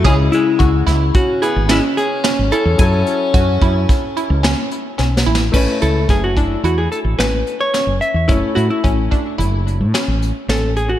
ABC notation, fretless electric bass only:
X:1
M:5/4
L:1/16
Q:1/4=109
K:A
V:1 name="Fretless electric bass" clef=bass
C,,2 z2 C,,2 C,,2 z3 G,,,2 z4 G,,, z E,, | F,,2 z2 F,,2 F,,2 z3 C,,2 z3 B,,,2 A,,,2 | A,,, z C,,2 F,,,4 E,,2 z A,,, A,,,2 z3 F,,, z E,, | F,,, z A,, z A,,,2 z2 F,,,3 A,, z A,,,2 z A,,,4 |]